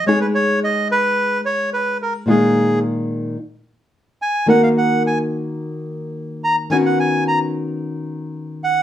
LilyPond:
<<
  \new Staff \with { instrumentName = "Bandoneon" } { \time 4/4 \key ees \minor \tempo 4 = 109 des''16 ces''16 des''8 ees''8 ces''4 des''8 ces''8 bes'8 | aes'4 r2 r8 aes''8 | ges''16 f''16 ges''8 aes''8 r2 bes''8 | aes''16 fis''16 aes''8 bes''8 r2 fis''8 | }
  \new Staff \with { instrumentName = "Nylon-string guitar" } { \time 4/4 \key ees \minor <aes ees' aes'>1 | <bes, ees aes ees' f'>2 r2 | <ees bes ees' ges' bes'>1 | <dis b cis' fis'>1 | }
>>